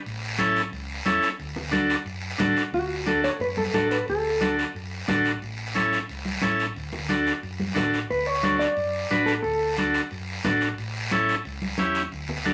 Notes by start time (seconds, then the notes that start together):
0.06 A1, long guiro
0.38 C#4 E4 A4, high conga, short guiro
0.56 short guiro
0.72 C#2, long guiro
1.05 E2 C#4 E4 A4, high conga, short guiro
1.23 short guiro
1.39 D2, long guiro
1.56 low conga
1.71 D4 F#4 A4, high conga, short guiro
1.90 short guiro
2.05 F#2, long guiro
2.38 A1 D4 F#4 A4, high conga, low conga, short guiro
2.57 short guiro
2.72 D2 F#4, long guiro
3.06 D4 F#4 A4, high conga, short guiro
3.24 C#5, short guiro
3.39 F#2 B4, long guiro
3.57 A4, high conga
3.73 A1 D4 F#4 A4, high conga, short guiro
3.91 B4, short guiro
4.07 D2 A4, long guiro
4.41 D4 F#4 A4, high conga, short guiro
4.59 short guiro
4.75 F#2, long guiro
5.08 A1 D4 F#4 A4, high conga, low conga, short guiro
5.25 short guiro
5.42 A1, long guiro
5.75 C#4 E4 A4, high conga, short guiro
5.93 short guiro
6.09 C#2, long guiro
6.25 high conga
6.42 A1 C#4 E4 A4, high conga, short guiro
6.60 short guiro
6.76 D2, long guiro
6.92 low conga
7.09 D4 F#4 A4, high conga, short guiro
7.27 short guiro
7.43 F#2, long guiro
7.60 high conga
7.74 A1 D4 F#4 A4, high conga, low conga, short guiro
7.94 short guiro
8.10 D2 B4, long guiro
8.27 C#5
8.43 D4 F#4 A4, high conga, short guiro
8.59 D5, short guiro
8.77 F#2, long guiro
9.10 A1 D4 F#4 B4, high conga, short guiro
9.26 A4, short guiro
9.43 D2 A4, long guiro
9.77 D4 F#4 A4, high conga, short guiro
9.94 short guiro
10.11 F#2, long guiro
10.44 A1 D4 F#4 A4, high conga, low conga, short guiro
10.61 short guiro
10.78 A1, long guiro
11.11 C#4 E4 A4, high conga, short guiro
11.29 short guiro
11.45 C#2, long guiro
11.62 high conga
11.78 E2 C#4 E4 G4, high conga, short guiro
11.95 short guiro
12.12 D2, long guiro
12.29 low conga
12.45 D4 F#4 A4, high conga, short guiro